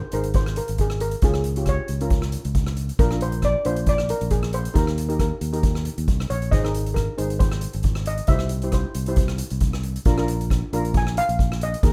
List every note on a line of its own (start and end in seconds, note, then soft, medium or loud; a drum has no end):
0.12 0.60 G#1 medium
0.12 0.66 D#4 medium
0.12 0.66 G#4 medium
0.12 0.36 A#4 medium
0.12 0.66 C5 medium
0.12 closed hi-hat medium
0.24 closed hi-hat medium
0.34 0.58 C5 medium
0.34 kick loud
0.34 closed hi-hat medium
0.46 cross-stick medium
0.56 0.80 A#4 medium
0.56 closed hi-hat medium
0.68 1.14 G#1 medium
0.68 closed hi-hat medium
0.78 1.02 G#4 medium
0.78 kick medium
0.78 closed hi-hat medium
0.90 cross-stick medium
1.00 1.24 A#4 medium
1.00 closed hi-hat medium
1.11 closed hi-hat medium
1.22 1.78 C#2 loud
1.22 1.43 C#4 medium
1.22 1.43 F4 medium
1.22 1.43 G#4 medium
1.22 1.69 G#4 medium
1.22 kick loud
1.22 closed hi-hat medium
1.34 cross-stick medium
1.44 closed hi-hat medium
1.56 1.83 C#4 medium
1.56 1.83 F4 medium
1.56 1.83 G4 medium
1.56 closed hi-hat medium
1.66 2.09 C#5 medium
1.66 kick medium
1.66 cross-stick medium
1.66 closed hi-hat medium
1.88 2.36 C#2 medium
1.88 closed hi-hat medium
2.01 2.53 C#4 medium
2.01 2.53 F4 medium
2.01 2.53 A#4 medium
2.01 closed hi-hat medium
2.10 kick loud
2.10 closed hi-hat medium
2.22 cross-stick medium
2.32 closed hi-hat medium
2.45 2.90 C#2 medium
2.45 closed hi-hat medium
2.55 kick medium
2.55 closed hi-hat medium
2.67 cross-stick medium
2.77 closed hi-hat medium
2.89 closed hi-hat medium
2.99 3.54 A#1 loud
2.99 3.06 D4 medium
2.99 3.06 F4 medium
2.99 3.22 A#4 loud
2.99 3.06 A#4 medium
2.99 kick loud
2.99 closed hi-hat medium
3.11 3.43 D4 medium
3.11 3.43 F4 medium
3.11 3.43 A#4 medium
3.11 cross-stick medium
3.21 3.44 C5 loud
3.21 closed hi-hat medium
3.32 closed hi-hat medium
3.42 3.67 D5 loud
3.42 kick medium
3.42 cross-stick medium
3.42 closed hi-hat medium
3.65 4.12 A#1 medium
3.65 4.19 D4 medium
3.65 4.19 F4 medium
3.65 3.88 C5 medium
3.65 4.19 C5 medium
3.65 closed hi-hat medium
3.76 closed hi-hat medium
3.86 4.11 D5 loud
3.86 kick loud
3.86 closed hi-hat medium
3.98 cross-stick medium
4.09 4.33 A#4 medium
4.09 closed hi-hat medium
4.21 4.67 A#1 medium
4.21 closed hi-hat medium
4.30 4.54 G#4 medium
4.30 kick medium
4.30 closed hi-hat medium
4.43 cross-stick medium
4.53 4.77 C5 medium
4.53 closed hi-hat medium
4.65 closed hi-hat medium
4.74 5.31 D#2 loud
4.74 4.95 D#4 medium
4.74 4.95 G4 medium
4.74 4.95 A#4 medium
4.74 5.19 A#4 medium
4.74 kick loud
4.74 closed hi-hat medium
4.87 cross-stick medium
4.98 closed hi-hat medium
5.09 5.35 D#4 medium
5.09 5.36 G4 medium
5.09 5.35 A#4 medium
5.09 closed hi-hat medium
5.19 5.61 A#4 medium
5.19 kick medium
5.19 cross-stick medium
5.19 closed hi-hat medium
5.41 5.88 D#2 medium
5.41 closed hi-hat medium
5.53 6.06 D#4 medium
5.53 6.06 G4 medium
5.53 6.06 A#4 medium
5.53 closed hi-hat medium
5.63 kick loud
5.63 closed hi-hat medium
5.75 cross-stick medium
5.85 closed hi-hat medium
5.98 6.06 D#2 medium
5.98 closed hi-hat medium
6.08 6.28 C2 medium
6.08 kick medium
6.08 closed hi-hat medium
6.20 cross-stick medium
6.30 6.50 A#1 medium
6.30 6.53 C#5 medium
6.30 closed hi-hat medium
6.42 closed hi-hat medium
6.51 7.08 G#1 loud
6.51 6.60 D#4 medium
6.51 6.59 G#4 medium
6.51 6.60 C5 medium
6.51 6.97 D#5 loud
6.51 kick loud
6.51 closed hi-hat medium
6.64 6.97 D#4 medium
6.64 6.96 G#4 medium
6.64 6.96 A#4 medium
6.64 cross-stick medium
6.74 closed hi-hat medium
6.86 closed hi-hat medium
6.94 7.41 A#4 medium
6.94 kick medium
6.94 cross-stick medium
6.94 closed hi-hat medium
7.18 7.66 G#1 medium
7.18 7.72 D#4 medium
7.18 7.72 G#4 medium
7.18 7.72 C5 medium
7.18 closed hi-hat medium
7.30 closed hi-hat medium
7.39 7.81 C5 medium
7.39 kick loud
7.39 closed hi-hat medium
7.52 cross-stick medium
7.61 closed hi-hat medium
7.73 8.20 G#1 medium
7.73 closed hi-hat medium
7.83 kick medium
7.83 closed hi-hat medium
7.95 cross-stick medium
8.06 8.30 D#5 loud
8.06 closed hi-hat medium
8.18 closed hi-hat medium
8.27 8.84 C2 loud
8.27 8.50 E4 medium
8.27 8.50 G4 medium
8.27 8.50 C5 medium
8.27 8.74 E5 loud
8.27 kick loud
8.27 closed hi-hat medium
8.39 cross-stick medium
8.49 closed hi-hat medium
8.62 8.90 E4 medium
8.62 8.90 G4 medium
8.62 8.90 C5 medium
8.62 closed hi-hat medium
8.72 9.80 C5 medium
8.72 kick medium
8.72 cross-stick medium
8.72 closed hi-hat medium
8.95 9.42 C2 medium
8.95 closed hi-hat medium
9.06 9.60 E4 medium
9.06 9.60 G4 medium
9.06 9.60 C5 medium
9.06 closed hi-hat medium
9.16 kick loud
9.16 closed hi-hat medium
9.28 cross-stick medium
9.38 closed hi-hat medium
9.50 9.97 C2 medium
9.50 closed hi-hat medium
9.60 kick medium
9.60 closed hi-hat medium
9.73 cross-stick medium
9.83 closed hi-hat medium
9.96 closed hi-hat medium
10.05 10.61 A#1 loud
10.05 10.13 D4 medium
10.05 10.13 F4 medium
10.05 10.13 A#4 medium
10.05 kick loud
10.05 closed hi-hat medium
10.18 10.50 D4 medium
10.18 10.50 F4 medium
10.18 10.50 A#4 medium
10.18 cross-stick medium
10.28 closed hi-hat medium
10.41 closed hi-hat medium
10.50 kick medium
10.50 cross-stick medium
10.50 closed hi-hat medium
10.73 11.19 A#1 medium
10.73 11.27 D4 medium
10.73 11.27 F4 medium
10.73 11.27 A#4 loud
10.73 closed hi-hat medium
10.85 closed hi-hat medium
10.94 11.19 G#5 loud
10.94 kick loud
10.94 closed hi-hat medium
11.07 cross-stick medium
11.17 11.63 F5 loud
11.17 closed hi-hat medium
11.29 11.74 A#1 medium
11.29 closed hi-hat medium
11.39 kick medium
11.39 closed hi-hat medium
11.52 cross-stick medium
11.61 11.93 D#5 loud
11.61 closed hi-hat medium
11.74 closed hi-hat medium
11.83 11.93 D#2 loud
11.83 11.93 D#4 medium
11.83 11.93 G#4 medium
11.83 11.93 A#4 medium
11.83 kick loud
11.83 closed hi-hat medium